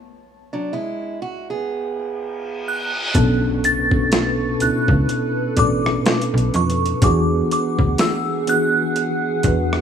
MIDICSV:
0, 0, Header, 1, 10, 480
1, 0, Start_track
1, 0, Tempo, 967742
1, 1562, Time_signature, 4, 2, 24, 8
1, 4866, End_track
2, 0, Start_track
2, 0, Title_t, "Synth bell"
2, 0, Program_c, 0, 98
2, 1331, Note_on_c, 0, 90, 86
2, 1810, Note_on_c, 0, 93, 99
2, 1821, Note_off_c, 0, 90, 0
2, 2291, Note_on_c, 0, 90, 86
2, 2300, Note_off_c, 0, 93, 0
2, 2773, Note_on_c, 0, 86, 92
2, 2781, Note_off_c, 0, 90, 0
2, 3228, Note_off_c, 0, 86, 0
2, 3253, Note_on_c, 0, 85, 82
2, 3491, Note_on_c, 0, 86, 86
2, 3495, Note_off_c, 0, 85, 0
2, 3710, Note_off_c, 0, 86, 0
2, 3733, Note_on_c, 0, 86, 87
2, 3971, Note_on_c, 0, 88, 86
2, 3975, Note_off_c, 0, 86, 0
2, 4190, Note_off_c, 0, 88, 0
2, 4213, Note_on_c, 0, 90, 96
2, 4866, Note_off_c, 0, 90, 0
2, 4866, End_track
3, 0, Start_track
3, 0, Title_t, "Synth pluck"
3, 0, Program_c, 1, 84
3, 1562, Note_on_c, 1, 81, 75
3, 2567, Note_off_c, 1, 81, 0
3, 2762, Note_on_c, 1, 74, 79
3, 3703, Note_off_c, 1, 74, 0
3, 4866, End_track
4, 0, Start_track
4, 0, Title_t, "Ambient pad"
4, 0, Program_c, 2, 92
4, 1561, Note_on_c, 2, 85, 96
4, 1562, Note_on_c, 2, 71, 80
4, 1563, Note_on_c, 2, 69, 83
4, 2512, Note_off_c, 2, 85, 0
4, 3463, Note_off_c, 2, 69, 0
4, 3463, Note_off_c, 2, 71, 0
4, 3486, Note_on_c, 2, 68, 88
4, 3487, Note_on_c, 2, 78, 80
4, 4866, Note_off_c, 2, 68, 0
4, 4866, Note_off_c, 2, 78, 0
4, 4866, End_track
5, 0, Start_track
5, 0, Title_t, "Steel-string acoustic guitar"
5, 0, Program_c, 3, 25
5, 262, Note_on_c, 3, 62, 69
5, 265, Note_on_c, 3, 54, 56
5, 358, Note_off_c, 3, 62, 0
5, 359, Note_off_c, 3, 54, 0
5, 362, Note_on_c, 3, 64, 81
5, 366, Note_on_c, 3, 56, 67
5, 590, Note_off_c, 3, 64, 0
5, 592, Note_off_c, 3, 56, 0
5, 604, Note_on_c, 3, 66, 87
5, 736, Note_off_c, 3, 66, 0
5, 744, Note_on_c, 3, 68, 72
5, 747, Note_on_c, 3, 59, 60
5, 1443, Note_off_c, 3, 68, 0
5, 1444, Note_off_c, 3, 59, 0
5, 4866, End_track
6, 0, Start_track
6, 0, Title_t, "Tine electric piano"
6, 0, Program_c, 4, 4
6, 1557, Note_on_c, 4, 47, 97
6, 1562, Note_on_c, 4, 59, 91
6, 1567, Note_on_c, 4, 61, 89
6, 1571, Note_on_c, 4, 62, 93
6, 1574, Note_on_c, 4, 69, 105
6, 1649, Control_c, 4, 64, 127
6, 1892, Note_off_c, 4, 47, 0
6, 1894, Note_off_c, 4, 59, 0
6, 1897, Note_off_c, 4, 61, 0
6, 1899, Note_off_c, 4, 62, 0
6, 1901, Note_off_c, 4, 69, 0
6, 1937, Note_on_c, 4, 47, 70
6, 1940, Note_on_c, 4, 59, 64
6, 1945, Note_on_c, 4, 61, 64
6, 1949, Note_on_c, 4, 62, 65
6, 1955, Note_on_c, 4, 69, 74
6, 2246, Note_off_c, 4, 47, 0
6, 2248, Note_off_c, 4, 59, 0
6, 2250, Note_off_c, 4, 61, 0
6, 2252, Note_off_c, 4, 62, 0
6, 2255, Note_off_c, 4, 69, 0
6, 2278, Note_on_c, 4, 47, 76
6, 2283, Note_on_c, 4, 59, 66
6, 2286, Note_on_c, 4, 61, 65
6, 2291, Note_on_c, 4, 62, 70
6, 2295, Note_on_c, 4, 64, 83
6, 2715, Note_off_c, 4, 47, 0
6, 2717, Note_off_c, 4, 59, 0
6, 2719, Note_off_c, 4, 61, 0
6, 2721, Note_off_c, 4, 62, 0
6, 2724, Note_off_c, 4, 64, 0
6, 2758, Note_on_c, 4, 47, 77
6, 2761, Note_on_c, 4, 59, 70
6, 2766, Note_on_c, 4, 61, 73
6, 2771, Note_on_c, 4, 62, 70
6, 2775, Note_on_c, 4, 69, 88
6, 3412, Note_off_c, 4, 47, 0
6, 3414, Note_off_c, 4, 59, 0
6, 3416, Note_off_c, 4, 61, 0
6, 3419, Note_off_c, 4, 62, 0
6, 3421, Note_off_c, 4, 69, 0
6, 3477, Note_on_c, 4, 52, 97
6, 3482, Note_on_c, 4, 59, 93
6, 3486, Note_on_c, 4, 62, 95
6, 3489, Control_c, 4, 64, 0
6, 3491, Note_on_c, 4, 66, 93
6, 3496, Note_on_c, 4, 68, 110
6, 3566, Control_c, 4, 64, 127
6, 4132, Note_off_c, 4, 52, 0
6, 4134, Note_off_c, 4, 59, 0
6, 4137, Note_off_c, 4, 62, 0
6, 4139, Note_off_c, 4, 66, 0
6, 4141, Note_off_c, 4, 68, 0
6, 4198, Note_on_c, 4, 52, 75
6, 4202, Note_on_c, 4, 59, 69
6, 4207, Note_on_c, 4, 62, 68
6, 4211, Note_on_c, 4, 66, 70
6, 4216, Note_on_c, 4, 68, 83
6, 4635, Note_off_c, 4, 52, 0
6, 4637, Note_off_c, 4, 59, 0
6, 4639, Note_off_c, 4, 62, 0
6, 4642, Note_off_c, 4, 66, 0
6, 4644, Note_off_c, 4, 68, 0
6, 4680, Note_on_c, 4, 52, 74
6, 4684, Note_on_c, 4, 59, 70
6, 4688, Note_on_c, 4, 62, 68
6, 4692, Note_on_c, 4, 66, 65
6, 4698, Note_on_c, 4, 71, 83
6, 4866, Note_off_c, 4, 52, 0
6, 4866, Note_off_c, 4, 59, 0
6, 4866, Note_off_c, 4, 62, 0
6, 4866, Note_off_c, 4, 66, 0
6, 4866, Note_off_c, 4, 71, 0
6, 4866, End_track
7, 0, Start_track
7, 0, Title_t, "FM bass"
7, 0, Program_c, 5, 39
7, 1564, Note_on_c, 5, 35, 105
7, 2263, Note_off_c, 5, 35, 0
7, 2287, Note_on_c, 5, 37, 48
7, 2341, Note_off_c, 5, 37, 0
7, 2424, Note_on_c, 5, 37, 93
7, 2507, Note_off_c, 5, 37, 0
7, 2765, Note_on_c, 5, 33, 92
7, 2964, Note_off_c, 5, 33, 0
7, 3144, Note_on_c, 5, 35, 88
7, 3227, Note_off_c, 5, 35, 0
7, 3246, Note_on_c, 5, 41, 95
7, 3445, Note_off_c, 5, 41, 0
7, 3483, Note_on_c, 5, 40, 101
7, 3683, Note_off_c, 5, 40, 0
7, 3864, Note_on_c, 5, 38, 86
7, 3947, Note_off_c, 5, 38, 0
7, 4683, Note_on_c, 5, 40, 91
7, 4866, Note_off_c, 5, 40, 0
7, 4866, End_track
8, 0, Start_track
8, 0, Title_t, "Impact"
8, 0, Program_c, 6, 103
8, 1562, Note_on_c, 6, 60, 81
8, 3482, Note_off_c, 6, 60, 0
8, 4866, End_track
9, 0, Start_track
9, 0, Title_t, "Reverse cymbal"
9, 0, Program_c, 7, 119
9, 602, Note_on_c, 7, 60, 82
9, 1562, Note_off_c, 7, 60, 0
9, 4866, End_track
10, 0, Start_track
10, 0, Title_t, "Drums"
10, 1561, Note_on_c, 9, 42, 88
10, 1562, Note_on_c, 9, 36, 126
10, 1611, Note_off_c, 9, 42, 0
10, 1612, Note_off_c, 9, 36, 0
10, 1806, Note_on_c, 9, 42, 71
10, 1855, Note_off_c, 9, 42, 0
10, 1941, Note_on_c, 9, 36, 97
10, 1991, Note_off_c, 9, 36, 0
10, 2042, Note_on_c, 9, 42, 76
10, 2047, Note_on_c, 9, 38, 102
10, 2092, Note_off_c, 9, 42, 0
10, 2096, Note_off_c, 9, 38, 0
10, 2283, Note_on_c, 9, 42, 68
10, 2333, Note_off_c, 9, 42, 0
10, 2422, Note_on_c, 9, 36, 93
10, 2471, Note_off_c, 9, 36, 0
10, 2525, Note_on_c, 9, 42, 59
10, 2574, Note_off_c, 9, 42, 0
10, 2761, Note_on_c, 9, 42, 72
10, 2763, Note_on_c, 9, 36, 90
10, 2810, Note_off_c, 9, 42, 0
10, 2812, Note_off_c, 9, 36, 0
10, 2908, Note_on_c, 9, 37, 88
10, 2957, Note_off_c, 9, 37, 0
10, 3004, Note_on_c, 9, 42, 54
10, 3008, Note_on_c, 9, 38, 118
10, 3053, Note_off_c, 9, 42, 0
10, 3057, Note_off_c, 9, 38, 0
10, 3083, Note_on_c, 9, 42, 55
10, 3132, Note_off_c, 9, 42, 0
10, 3163, Note_on_c, 9, 42, 52
10, 3212, Note_off_c, 9, 42, 0
10, 3243, Note_on_c, 9, 42, 54
10, 3292, Note_off_c, 9, 42, 0
10, 3321, Note_on_c, 9, 42, 53
10, 3371, Note_off_c, 9, 42, 0
10, 3400, Note_on_c, 9, 42, 53
10, 3450, Note_off_c, 9, 42, 0
10, 3481, Note_on_c, 9, 42, 90
10, 3482, Note_on_c, 9, 36, 127
10, 3530, Note_off_c, 9, 42, 0
10, 3532, Note_off_c, 9, 36, 0
10, 3727, Note_on_c, 9, 42, 71
10, 3777, Note_off_c, 9, 42, 0
10, 3862, Note_on_c, 9, 36, 89
10, 3912, Note_off_c, 9, 36, 0
10, 3960, Note_on_c, 9, 42, 79
10, 3965, Note_on_c, 9, 38, 100
10, 4010, Note_off_c, 9, 42, 0
10, 4014, Note_off_c, 9, 38, 0
10, 4203, Note_on_c, 9, 42, 71
10, 4253, Note_off_c, 9, 42, 0
10, 4443, Note_on_c, 9, 42, 59
10, 4493, Note_off_c, 9, 42, 0
10, 4679, Note_on_c, 9, 42, 70
10, 4683, Note_on_c, 9, 36, 91
10, 4728, Note_off_c, 9, 42, 0
10, 4732, Note_off_c, 9, 36, 0
10, 4825, Note_on_c, 9, 37, 88
10, 4866, Note_off_c, 9, 37, 0
10, 4866, End_track
0, 0, End_of_file